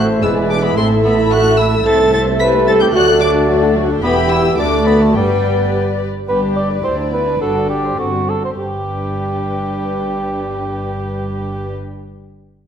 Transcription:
Already playing: double bass section A1, cello section A2, bassoon A3, viola section C4 E4, violin section A4 C5, french horn section A4, clarinet C5, flute E5
0.22 double bass section E1, cello section E2, bassoon G#3, viola section B3, cor anglais E4, violin section G#4 D5 E6, french horn section G#4, clarinet B4, flute E5
0.50 cor anglais D4, violin section D6
0.64 cor anglais B3, violin section B5
0.77 double bass section A1, cello section A2, viola section A3, bassoon A3, cor anglais C4, french horn section A4, violin section A4 E5 C6, clarinet A4, flute E5
1.05 cor anglais B3, violin section B5
1.31 cor anglais F#4, violin section F#6
1.58 cor anglais E4, violin section E6
1.85 double bass section C2, cello section C2, bassoon A3, viola section C4 E4, clarinet A4, cor anglais A4, violin section C5 E5 A6, flute E5
1.99 viola section A3 C4, violin section A4 C5
2.13 viola section C4 E4, cor anglais A4, violin section C5 E5 A6
2.26 viola section A3 C4, violin section A4 C5
2.40 viola section C4 E4, french horn section G4, cor anglais B4, violin section C5 E5 B6
2.53 viola section A3 C4, violin section A4 C5
2.66 viola section C4 E4, cor anglais A4, violin section C5 E5 A6
2.80 viola section A3 C4, cor anglais G4, violin section A4 C5 G6
2.93 cello section D2, double bass section D2, viola section F#3 F#4, bassoon A3, french horn section F#4, violin section F#4 D5 F#6, cor anglais F#4, clarinet A4, flute D5
3.07 viola section A3 D4, violin section A4 F#5
3.20 viola section F#3 F#4, cor anglais D4, violin section F#4 D5 D6
3.34 viola section A3 D4, violin section A4 F#5
3.48 viola section F#3 F#4, violin section F#4 D5, french horn section A4
3.62 viola section A3 D4, violin section A4 F#5
3.76 viola section F#3 F#4, violin section F#4 D5
3.89 viola section A3 D4, violin section A4 F#5
4.02 double bass section E1, cello section E2, viola section E3 E4, bassoon B3, cor anglais B3, violin section G4 G5 B5, french horn section G4, clarinet G4, flute E5
4.31 cor anglais E4, violin section E6
4.58 cello section D2, double bass section D2, viola section A3 F#4, bassoon A3, cor anglais D4, clarinet F#4, violin section A4 D5 D6, french horn section A4, flute D5
4.86 cor anglais B3, violin section B5
5.01 cor anglais A3, violin section A5
5.14 double bass section G1, cello section G2, viola section G3 G4, cor anglais G3, bassoon B3, clarinet G4, violin section B4 D5 G5, french horn section B4, flute D5
6.28 double bass section G1, cello section G2, violin section B3 G4 D5, viola section D4, cor anglais B4
6.43 violin section D4
6.56 violin section G4, cor anglais D5
6.71 violin section B4
6.84 cello section D2, double bass section D2, viola section E4, violin section G4, cor anglais C5
6.98 violin section D4
7.12 violin section B3, cor anglais B4
7.26 violin section D4
7.40 double bass section G1, cello section G2, violin section D4 F#4, viola section D4, cor anglais A4
7.55 violin section F#4
7.69 cor anglais G4, violin section A4
7.83 violin section C5
7.98 double bass section G1, cello section G2, viola section C4, cor anglais F#4, violin section A4
8.13 violin section F#4
8.28 violin section D4, cor anglais A4
8.43 violin section F#4, cor anglais C5
8.58 double bass section G1, cello section G2, viola section D4, violin section G4 B4, cor anglais G4

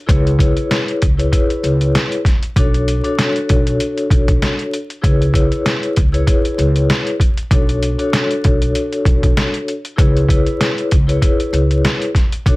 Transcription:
0.06 upright bass C#2, vibraphone E4 G#4 B4 C#5, kick, closed hi-hat
0.27 closed hi-hat
0.39 vibraphone E4 G#4 B4 C#5, kick, closed hi-hat
0.57 closed hi-hat
0.71 snare, closed hi-hat
0.88 closed hi-hat
1.02 upright bass C#2, kick, closed hi-hat
1.17 vibraphone E4 G#4 B4 C#5, closed hi-hat
1.32 vibraphone E4 G#4 B4 C#5, kick, closed hi-hat
1.50 closed hi-hat
1.63 upright bass C#2, closed hi-hat
1.81 closed hi-hat
1.95 snare, closed hi-hat
2.12 closed hi-hat
2.25 kick, snare, closed hi-hat
2.43 closed hi-hat
2.56 upright bass B1, vibraphone D4 F#4 A4 C#5, kick, closed hi-hat
2.74 closed hi-hat
2.88 closed hi-hat
3.04 vibraphone D4 F#4 A4 C#5, closed hi-hat
3.18 vibraphone D4 F#4 A4 C#5, snare, closed hi-hat
3.36 closed hi-hat
3.49 upright bass B1, kick, closed hi-hat
3.67 closed hi-hat
3.80 closed hi-hat
3.98 closed hi-hat
4.10 upright bass B1, kick, closed hi-hat
4.28 kick, closed hi-hat
4.42 snare, closed hi-hat
4.59 closed hi-hat
4.73 closed hi-hat
4.90 closed hi-hat
5.01 upright bass C#2, vibraphone E4 G#4 B4 C#5, kick, closed hi-hat
5.22 closed hi-hat
5.34 vibraphone E4 G#4 B4 C#5, kick, closed hi-hat
5.52 closed hi-hat
5.66 snare, closed hi-hat
5.83 closed hi-hat
5.96 upright bass C#2, kick, closed hi-hat
6.12 vibraphone E4 G#4 B4 C#5, closed hi-hat
6.27 vibraphone E4 G#4 B4 C#5, kick, closed hi-hat
6.45 closed hi-hat
6.58 upright bass C#2, closed hi-hat
6.76 closed hi-hat
6.90 snare, closed hi-hat
7.07 closed hi-hat
7.20 kick, closed hi-hat
7.37 closed hi-hat
7.51 upright bass B1, vibraphone D4 F#4 A4 C#5, kick, closed hi-hat
7.69 closed hi-hat
7.83 closed hi-hat
7.98 vibraphone D4 F#4 A4 C#5, closed hi-hat
8.12 vibraphone D4 F#4 A4 C#5, snare, closed hi-hat
8.31 closed hi-hat
8.44 upright bass B1, kick, closed hi-hat
8.62 closed hi-hat
8.75 closed hi-hat
8.92 closed hi-hat
9.05 upright bass B1, kick, closed hi-hat
9.23 kick, closed hi-hat
9.37 snare, closed hi-hat
9.54 closed hi-hat
9.68 closed hi-hat
9.85 closed hi-hat
9.96 upright bass C#2, vibraphone E4 G#4 B4 C#5, kick, closed hi-hat
10.17 closed hi-hat
10.28 vibraphone E4 G#4 B4 C#5, kick, closed hi-hat
10.46 closed hi-hat
10.61 snare, closed hi-hat
10.78 closed hi-hat
10.91 upright bass C#2, kick, closed hi-hat
11.07 vibraphone E4 G#4 B4 C#5, closed hi-hat
11.22 vibraphone E4 G#4 B4 C#5, kick, closed hi-hat
11.40 closed hi-hat
11.53 upright bass C#2, closed hi-hat
11.71 closed hi-hat
11.85 snare, closed hi-hat
12.02 closed hi-hat
12.15 kick, snare, closed hi-hat
12.32 closed hi-hat
12.46 upright bass B1, vibraphone D4 F#4 A4 C#5, kick, closed hi-hat

